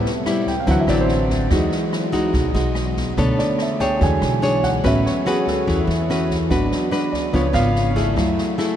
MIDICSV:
0, 0, Header, 1, 5, 480
1, 0, Start_track
1, 0, Tempo, 416667
1, 1738, Time_signature, 4, 2, 24, 8
1, 10095, End_track
2, 0, Start_track
2, 0, Title_t, "Grand piano"
2, 0, Program_c, 0, 0
2, 0, Note_on_c, 0, 48, 39
2, 0, Note_on_c, 0, 55, 34
2, 0, Note_on_c, 0, 59, 47
2, 15, Control_c, 0, 64, 127
2, 131, Note_off_c, 0, 48, 0
2, 135, Note_off_c, 0, 55, 0
2, 137, Note_off_c, 0, 59, 0
2, 553, Note_on_c, 0, 79, 60
2, 662, Note_off_c, 0, 79, 0
2, 692, Note_on_c, 0, 77, 57
2, 778, Note_on_c, 0, 52, 49
2, 787, Note_on_c, 0, 54, 37
2, 792, Note_off_c, 0, 77, 0
2, 793, Note_on_c, 0, 60, 49
2, 795, Control_c, 0, 64, 0
2, 815, Note_on_c, 0, 78, 77
2, 913, Note_off_c, 0, 78, 0
2, 932, Note_on_c, 0, 76, 52
2, 983, Control_c, 0, 64, 127
2, 1026, Note_on_c, 0, 74, 73
2, 1032, Note_off_c, 0, 76, 0
2, 1139, Note_off_c, 0, 74, 0
2, 1161, Note_on_c, 0, 72, 54
2, 1692, Note_off_c, 0, 52, 0
2, 1696, Note_off_c, 0, 54, 0
2, 1699, Note_off_c, 0, 60, 0
2, 1723, Note_on_c, 0, 54, 39
2, 1736, Note_on_c, 0, 56, 38
2, 1736, Note_on_c, 0, 63, 45
2, 1751, Control_c, 0, 64, 0
2, 1824, Note_off_c, 0, 72, 0
2, 1950, Control_c, 0, 64, 127
2, 2414, Note_off_c, 0, 54, 0
2, 2421, Note_off_c, 0, 56, 0
2, 2421, Note_off_c, 0, 63, 0
2, 3659, Note_on_c, 0, 50, 38
2, 3663, Note_on_c, 0, 57, 39
2, 3671, Control_c, 0, 64, 0
2, 3878, Control_c, 0, 64, 127
2, 3905, Note_on_c, 0, 74, 68
2, 4135, Note_off_c, 0, 74, 0
2, 4173, Note_on_c, 0, 76, 52
2, 4342, Note_off_c, 0, 50, 0
2, 4345, Note_off_c, 0, 57, 0
2, 4379, Note_on_c, 0, 79, 66
2, 4389, Note_off_c, 0, 76, 0
2, 4601, Note_on_c, 0, 50, 49
2, 4608, Note_on_c, 0, 54, 43
2, 4611, Note_on_c, 0, 56, 43
2, 4612, Note_off_c, 0, 79, 0
2, 4636, Control_c, 0, 64, 0
2, 4643, Note_on_c, 0, 80, 77
2, 4854, Control_c, 0, 64, 127
2, 4929, Note_off_c, 0, 50, 0
2, 4932, Note_off_c, 0, 54, 0
2, 4934, Note_off_c, 0, 56, 0
2, 5305, Note_off_c, 0, 80, 0
2, 5343, Note_on_c, 0, 78, 68
2, 5571, Note_on_c, 0, 54, 41
2, 5574, Note_off_c, 0, 78, 0
2, 5578, Note_on_c, 0, 59, 37
2, 5580, Note_on_c, 0, 61, 46
2, 5594, Control_c, 0, 64, 0
2, 5610, Note_on_c, 0, 76, 64
2, 5788, Control_c, 0, 64, 127
2, 5827, Note_off_c, 0, 76, 0
2, 5829, Note_on_c, 0, 73, 59
2, 5894, Note_off_c, 0, 54, 0
2, 5897, Note_off_c, 0, 59, 0
2, 5898, Note_off_c, 0, 61, 0
2, 6057, Note_off_c, 0, 73, 0
2, 6077, Note_on_c, 0, 68, 63
2, 6301, Note_off_c, 0, 68, 0
2, 6310, Note_on_c, 0, 69, 54
2, 6978, Note_off_c, 0, 69, 0
2, 7473, Note_on_c, 0, 54, 40
2, 7484, Note_on_c, 0, 59, 36
2, 7488, Note_on_c, 0, 62, 45
2, 7513, Control_c, 0, 64, 0
2, 7745, Control_c, 0, 64, 127
2, 8209, Note_on_c, 0, 74, 60
2, 8400, Note_off_c, 0, 54, 0
2, 8405, Note_off_c, 0, 59, 0
2, 8407, Note_off_c, 0, 62, 0
2, 8433, Note_on_c, 0, 53, 47
2, 8445, Note_on_c, 0, 59, 42
2, 8447, Note_off_c, 0, 74, 0
2, 8451, Note_on_c, 0, 62, 54
2, 8469, Note_on_c, 0, 73, 67
2, 8471, Control_c, 0, 64, 0
2, 8688, Note_on_c, 0, 77, 86
2, 8697, Note_off_c, 0, 73, 0
2, 8704, Control_c, 0, 64, 127
2, 9140, Note_off_c, 0, 77, 0
2, 9360, Note_off_c, 0, 53, 0
2, 9366, Note_off_c, 0, 59, 0
2, 9369, Note_off_c, 0, 62, 0
2, 9395, Note_on_c, 0, 57, 34
2, 9407, Note_on_c, 0, 64, 44
2, 9435, Control_c, 0, 64, 0
2, 9629, Control_c, 0, 64, 127
2, 10091, Note_off_c, 0, 57, 0
2, 10095, Note_off_c, 0, 64, 0
2, 10095, End_track
3, 0, Start_track
3, 0, Title_t, "Nylon-string guitar"
3, 0, Program_c, 1, 24
3, 0, Note_on_c, 1, 45, 51
3, 0, Note_on_c, 1, 55, 52
3, 0, Note_on_c, 1, 60, 48
3, 0, Note_on_c, 1, 64, 54
3, 126, Note_off_c, 1, 55, 0
3, 130, Note_off_c, 1, 64, 0
3, 131, Note_off_c, 1, 60, 0
3, 304, Note_on_c, 1, 55, 63
3, 307, Note_on_c, 1, 64, 61
3, 309, Note_on_c, 1, 60, 53
3, 624, Note_off_c, 1, 55, 0
3, 624, Note_off_c, 1, 64, 0
3, 626, Note_off_c, 1, 60, 0
3, 754, Note_off_c, 1, 45, 0
3, 771, Note_on_c, 1, 50, 51
3, 774, Note_on_c, 1, 60, 55
3, 776, Note_on_c, 1, 54, 53
3, 781, Note_on_c, 1, 64, 62
3, 977, Note_off_c, 1, 60, 0
3, 979, Note_off_c, 1, 54, 0
3, 980, Note_off_c, 1, 64, 0
3, 1022, Note_on_c, 1, 54, 60
3, 1030, Note_on_c, 1, 60, 58
3, 1039, Note_on_c, 1, 64, 65
3, 1702, Note_off_c, 1, 54, 0
3, 1705, Note_off_c, 1, 60, 0
3, 1710, Note_off_c, 1, 64, 0
3, 1711, Note_off_c, 1, 50, 0
3, 1740, Note_on_c, 1, 56, 52
3, 1753, Note_on_c, 1, 52, 47
3, 1756, Note_on_c, 1, 63, 52
3, 1758, Note_on_c, 1, 66, 53
3, 2216, Note_off_c, 1, 56, 0
3, 2222, Note_off_c, 1, 63, 0
3, 2225, Note_off_c, 1, 66, 0
3, 2447, Note_on_c, 1, 56, 64
3, 2454, Note_on_c, 1, 63, 64
3, 2456, Note_on_c, 1, 66, 72
3, 2682, Note_off_c, 1, 52, 0
3, 2683, Note_on_c, 1, 47, 51
3, 2894, Note_off_c, 1, 56, 0
3, 2898, Note_off_c, 1, 63, 0
3, 2898, Note_off_c, 1, 66, 0
3, 2932, Note_on_c, 1, 63, 56
3, 2933, Note_on_c, 1, 56, 65
3, 2943, Note_on_c, 1, 66, 61
3, 3616, Note_off_c, 1, 63, 0
3, 3618, Note_off_c, 1, 56, 0
3, 3622, Note_off_c, 1, 66, 0
3, 3627, Note_off_c, 1, 47, 0
3, 3658, Note_on_c, 1, 59, 50
3, 3667, Note_on_c, 1, 62, 57
3, 3669, Note_on_c, 1, 69, 52
3, 3672, Note_on_c, 1, 73, 55
3, 4343, Note_off_c, 1, 69, 0
3, 4345, Note_off_c, 1, 62, 0
3, 4347, Note_off_c, 1, 73, 0
3, 4379, Note_on_c, 1, 62, 62
3, 4383, Note_on_c, 1, 68, 70
3, 4393, Note_on_c, 1, 73, 75
3, 4594, Note_off_c, 1, 59, 0
3, 4631, Note_on_c, 1, 52, 50
3, 5061, Note_off_c, 1, 62, 0
3, 5063, Note_off_c, 1, 68, 0
3, 5065, Note_off_c, 1, 73, 0
3, 5094, Note_on_c, 1, 62, 61
3, 5102, Note_on_c, 1, 68, 59
3, 5107, Note_on_c, 1, 73, 68
3, 5406, Note_off_c, 1, 62, 0
3, 5409, Note_off_c, 1, 68, 0
3, 5412, Note_off_c, 1, 73, 0
3, 5561, Note_off_c, 1, 52, 0
3, 5572, Note_on_c, 1, 57, 52
3, 5574, Note_on_c, 1, 61, 56
3, 5580, Note_on_c, 1, 66, 50
3, 5582, Note_on_c, 1, 71, 66
3, 6016, Note_off_c, 1, 61, 0
3, 6021, Note_off_c, 1, 71, 0
3, 6022, Note_off_c, 1, 66, 0
3, 6059, Note_on_c, 1, 61, 56
3, 6067, Note_on_c, 1, 66, 63
3, 6074, Note_on_c, 1, 71, 67
3, 6512, Note_off_c, 1, 57, 0
3, 6539, Note_on_c, 1, 52, 57
3, 6704, Note_off_c, 1, 61, 0
3, 6708, Note_off_c, 1, 66, 0
3, 6712, Note_off_c, 1, 71, 0
3, 7026, Note_on_c, 1, 61, 53
3, 7035, Note_on_c, 1, 71, 61
3, 7036, Note_on_c, 1, 66, 53
3, 7331, Note_off_c, 1, 61, 0
3, 7335, Note_off_c, 1, 71, 0
3, 7337, Note_off_c, 1, 66, 0
3, 7475, Note_off_c, 1, 52, 0
3, 7492, Note_on_c, 1, 56, 51
3, 7497, Note_on_c, 1, 62, 43
3, 7501, Note_on_c, 1, 66, 53
3, 7505, Note_on_c, 1, 71, 58
3, 7938, Note_off_c, 1, 62, 0
3, 7942, Note_off_c, 1, 66, 0
3, 7943, Note_off_c, 1, 71, 0
3, 7965, Note_on_c, 1, 62, 58
3, 7976, Note_on_c, 1, 71, 58
3, 7982, Note_on_c, 1, 66, 53
3, 8432, Note_off_c, 1, 56, 0
3, 8433, Note_off_c, 1, 62, 0
3, 8438, Note_off_c, 1, 71, 0
3, 8441, Note_off_c, 1, 66, 0
3, 8447, Note_on_c, 1, 49, 48
3, 8449, Note_on_c, 1, 59, 51
3, 8456, Note_on_c, 1, 62, 51
3, 8462, Note_on_c, 1, 65, 58
3, 8595, Note_off_c, 1, 59, 0
3, 8597, Note_off_c, 1, 62, 0
3, 8602, Note_off_c, 1, 65, 0
3, 8679, Note_on_c, 1, 59, 56
3, 8685, Note_on_c, 1, 62, 61
3, 8692, Note_on_c, 1, 65, 57
3, 9131, Note_off_c, 1, 59, 0
3, 9134, Note_off_c, 1, 62, 0
3, 9137, Note_off_c, 1, 65, 0
3, 9168, Note_on_c, 1, 57, 55
3, 9174, Note_on_c, 1, 64, 58
3, 9176, Note_on_c, 1, 68, 62
3, 9390, Note_off_c, 1, 49, 0
3, 9403, Note_on_c, 1, 54, 56
3, 9857, Note_off_c, 1, 57, 0
3, 9857, Note_off_c, 1, 64, 0
3, 9859, Note_off_c, 1, 68, 0
3, 9885, Note_on_c, 1, 57, 51
3, 9893, Note_on_c, 1, 64, 58
3, 9893, Note_on_c, 1, 68, 62
3, 10095, Note_off_c, 1, 54, 0
3, 10095, Note_off_c, 1, 57, 0
3, 10095, Note_off_c, 1, 64, 0
3, 10095, Note_off_c, 1, 68, 0
3, 10095, End_track
4, 0, Start_track
4, 0, Title_t, "Upright bass"
4, 0, Program_c, 2, 32
4, 770, Note_on_c, 2, 38, 92
4, 993, Note_off_c, 2, 38, 0
4, 1000, Note_on_c, 2, 33, 86
4, 1683, Note_off_c, 2, 33, 0
4, 1733, Note_on_c, 2, 40, 91
4, 1959, Note_off_c, 2, 40, 0
4, 2694, Note_on_c, 2, 35, 88
4, 2919, Note_off_c, 2, 35, 0
4, 2926, Note_on_c, 2, 35, 84
4, 3606, Note_off_c, 2, 35, 0
4, 3654, Note_on_c, 2, 35, 91
4, 3879, Note_off_c, 2, 35, 0
4, 4620, Note_on_c, 2, 40, 97
4, 4842, Note_off_c, 2, 40, 0
4, 4858, Note_on_c, 2, 35, 100
4, 5532, Note_off_c, 2, 35, 0
4, 5578, Note_on_c, 2, 33, 96
4, 5801, Note_off_c, 2, 33, 0
4, 6536, Note_on_c, 2, 40, 94
4, 6760, Note_off_c, 2, 40, 0
4, 6765, Note_on_c, 2, 40, 96
4, 7446, Note_off_c, 2, 40, 0
4, 7493, Note_on_c, 2, 32, 86
4, 7719, Note_off_c, 2, 32, 0
4, 8451, Note_on_c, 2, 37, 84
4, 8678, Note_off_c, 2, 37, 0
4, 8686, Note_on_c, 2, 32, 93
4, 9367, Note_off_c, 2, 32, 0
4, 9407, Note_on_c, 2, 42, 90
4, 9636, Note_off_c, 2, 42, 0
4, 10095, End_track
5, 0, Start_track
5, 0, Title_t, "Drums"
5, 65, Note_on_c, 9, 38, 24
5, 181, Note_off_c, 9, 38, 0
5, 298, Note_on_c, 9, 37, 61
5, 298, Note_on_c, 9, 38, 21
5, 413, Note_off_c, 9, 37, 0
5, 413, Note_off_c, 9, 38, 0
5, 537, Note_on_c, 9, 36, 24
5, 539, Note_on_c, 9, 38, 21
5, 652, Note_off_c, 9, 36, 0
5, 655, Note_off_c, 9, 38, 0
5, 769, Note_on_c, 9, 38, 20
5, 774, Note_on_c, 9, 36, 52
5, 884, Note_off_c, 9, 38, 0
5, 889, Note_off_c, 9, 36, 0
5, 1010, Note_on_c, 9, 37, 59
5, 1010, Note_on_c, 9, 38, 22
5, 1125, Note_off_c, 9, 37, 0
5, 1125, Note_off_c, 9, 38, 0
5, 1250, Note_on_c, 9, 38, 23
5, 1365, Note_off_c, 9, 38, 0
5, 1495, Note_on_c, 9, 36, 25
5, 1497, Note_on_c, 9, 38, 25
5, 1610, Note_off_c, 9, 36, 0
5, 1612, Note_off_c, 9, 38, 0
5, 1734, Note_on_c, 9, 37, 57
5, 1734, Note_on_c, 9, 38, 22
5, 1735, Note_on_c, 9, 36, 56
5, 1849, Note_off_c, 9, 37, 0
5, 1849, Note_off_c, 9, 38, 0
5, 1850, Note_off_c, 9, 36, 0
5, 1974, Note_on_c, 9, 38, 23
5, 2089, Note_off_c, 9, 38, 0
5, 2220, Note_on_c, 9, 37, 61
5, 2220, Note_on_c, 9, 38, 22
5, 2335, Note_off_c, 9, 37, 0
5, 2335, Note_off_c, 9, 38, 0
5, 2452, Note_on_c, 9, 38, 22
5, 2455, Note_on_c, 9, 36, 23
5, 2567, Note_off_c, 9, 38, 0
5, 2570, Note_off_c, 9, 36, 0
5, 2690, Note_on_c, 9, 38, 21
5, 2694, Note_on_c, 9, 36, 56
5, 2805, Note_off_c, 9, 38, 0
5, 2809, Note_off_c, 9, 36, 0
5, 2938, Note_on_c, 9, 38, 23
5, 3053, Note_off_c, 9, 38, 0
5, 3168, Note_on_c, 9, 37, 63
5, 3168, Note_on_c, 9, 38, 23
5, 3284, Note_off_c, 9, 37, 0
5, 3284, Note_off_c, 9, 38, 0
5, 3418, Note_on_c, 9, 36, 25
5, 3418, Note_on_c, 9, 38, 26
5, 3533, Note_off_c, 9, 36, 0
5, 3533, Note_off_c, 9, 38, 0
5, 3649, Note_on_c, 9, 38, 21
5, 3658, Note_on_c, 9, 36, 57
5, 3764, Note_off_c, 9, 38, 0
5, 3773, Note_off_c, 9, 36, 0
5, 3899, Note_on_c, 9, 38, 25
5, 4015, Note_off_c, 9, 38, 0
5, 4131, Note_on_c, 9, 37, 57
5, 4131, Note_on_c, 9, 38, 24
5, 4246, Note_off_c, 9, 37, 0
5, 4246, Note_off_c, 9, 38, 0
5, 4373, Note_on_c, 9, 38, 23
5, 4379, Note_on_c, 9, 36, 25
5, 4489, Note_off_c, 9, 38, 0
5, 4494, Note_off_c, 9, 36, 0
5, 4618, Note_on_c, 9, 38, 20
5, 4621, Note_on_c, 9, 36, 52
5, 4733, Note_off_c, 9, 38, 0
5, 4736, Note_off_c, 9, 36, 0
5, 4858, Note_on_c, 9, 37, 56
5, 4858, Note_on_c, 9, 38, 24
5, 4974, Note_off_c, 9, 37, 0
5, 4974, Note_off_c, 9, 38, 0
5, 5106, Note_on_c, 9, 38, 23
5, 5222, Note_off_c, 9, 38, 0
5, 5332, Note_on_c, 9, 38, 27
5, 5339, Note_on_c, 9, 36, 27
5, 5448, Note_off_c, 9, 38, 0
5, 5454, Note_off_c, 9, 36, 0
5, 5580, Note_on_c, 9, 37, 59
5, 5580, Note_on_c, 9, 38, 22
5, 5581, Note_on_c, 9, 36, 56
5, 5695, Note_off_c, 9, 37, 0
5, 5695, Note_off_c, 9, 38, 0
5, 5696, Note_off_c, 9, 36, 0
5, 5828, Note_on_c, 9, 38, 24
5, 5944, Note_off_c, 9, 38, 0
5, 6063, Note_on_c, 9, 37, 60
5, 6063, Note_on_c, 9, 38, 24
5, 6178, Note_off_c, 9, 37, 0
5, 6178, Note_off_c, 9, 38, 0
5, 6301, Note_on_c, 9, 36, 24
5, 6305, Note_on_c, 9, 38, 25
5, 6416, Note_off_c, 9, 36, 0
5, 6421, Note_off_c, 9, 38, 0
5, 6541, Note_on_c, 9, 36, 50
5, 6545, Note_on_c, 9, 38, 18
5, 6657, Note_off_c, 9, 36, 0
5, 6660, Note_off_c, 9, 38, 0
5, 6791, Note_on_c, 9, 38, 23
5, 6906, Note_off_c, 9, 38, 0
5, 7030, Note_on_c, 9, 37, 60
5, 7030, Note_on_c, 9, 38, 26
5, 7146, Note_off_c, 9, 37, 0
5, 7146, Note_off_c, 9, 38, 0
5, 7258, Note_on_c, 9, 36, 25
5, 7263, Note_on_c, 9, 38, 25
5, 7373, Note_off_c, 9, 36, 0
5, 7378, Note_off_c, 9, 38, 0
5, 7492, Note_on_c, 9, 38, 22
5, 7494, Note_on_c, 9, 36, 53
5, 7608, Note_off_c, 9, 38, 0
5, 7609, Note_off_c, 9, 36, 0
5, 7736, Note_on_c, 9, 38, 26
5, 7851, Note_off_c, 9, 38, 0
5, 7975, Note_on_c, 9, 37, 61
5, 7975, Note_on_c, 9, 38, 22
5, 8090, Note_off_c, 9, 37, 0
5, 8090, Note_off_c, 9, 38, 0
5, 8213, Note_on_c, 9, 36, 22
5, 8222, Note_on_c, 9, 38, 25
5, 8328, Note_off_c, 9, 36, 0
5, 8338, Note_off_c, 9, 38, 0
5, 8451, Note_on_c, 9, 36, 47
5, 8460, Note_on_c, 9, 38, 18
5, 8567, Note_off_c, 9, 36, 0
5, 8575, Note_off_c, 9, 38, 0
5, 8687, Note_on_c, 9, 37, 53
5, 8687, Note_on_c, 9, 38, 24
5, 8802, Note_off_c, 9, 37, 0
5, 8802, Note_off_c, 9, 38, 0
5, 8934, Note_on_c, 9, 38, 25
5, 9049, Note_off_c, 9, 38, 0
5, 9171, Note_on_c, 9, 36, 25
5, 9176, Note_on_c, 9, 38, 24
5, 9286, Note_off_c, 9, 36, 0
5, 9291, Note_off_c, 9, 38, 0
5, 9411, Note_on_c, 9, 36, 53
5, 9415, Note_on_c, 9, 37, 58
5, 9415, Note_on_c, 9, 38, 22
5, 9526, Note_off_c, 9, 36, 0
5, 9530, Note_off_c, 9, 37, 0
5, 9530, Note_off_c, 9, 38, 0
5, 9655, Note_on_c, 9, 38, 22
5, 9770, Note_off_c, 9, 38, 0
5, 9896, Note_on_c, 9, 37, 58
5, 9896, Note_on_c, 9, 38, 25
5, 10011, Note_off_c, 9, 37, 0
5, 10011, Note_off_c, 9, 38, 0
5, 10095, End_track
0, 0, End_of_file